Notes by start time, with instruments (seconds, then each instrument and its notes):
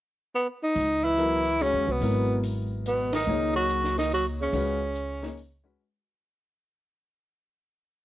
0.35 tenor saxophone B3
0.63 tenor saxophone D#4
0.75 upright bass C#2, open hi-hat
1.04 tenor saxophone E3 E4
1.17 grand piano F#3 B3 E4 A#4, closed hi-hat
1.45 open hi-hat
1.59 tenor saxophone C#3 C#4, grand piano G#3 C#4 F#4 C#5, open hi-hat
1.73 upright bass D#2
1.87 upright bass C2, tenor saxophone B2
1.92 tenor saxophone B3
2.01 upright bass G#1, grand piano F#3 B3 E4 A#4, open hi-hat
2.43 open hi-hat
2.85 tenor saxophone B2 B3, closed hi-hat
3.12 tenor saxophone D#3 D#4, snare, ride
3.27 upright bass C#2, grand piano A#3 D#4 G#4 C#5
3.55 tenor saxophone F#3 F#4
3.69 closed hi-hat
3.84 snare
3.98 tenor saxophone D#3 D#4, snare, open hi-hat
4.12 tenor saxophone F#3 F#4, open hi-hat
4.41 tenor saxophone C#3 C#4
4.52 upright bass C#2, grand piano G#3 C#4 F#4 B4, open hi-hat
4.95 closed hi-hat
5.22 grand piano A#3 D#4 G#4 C#5, snare, open hi-hat
5.37 open hi-hat
5.64 grand piano G#3 C#4 F#4 B4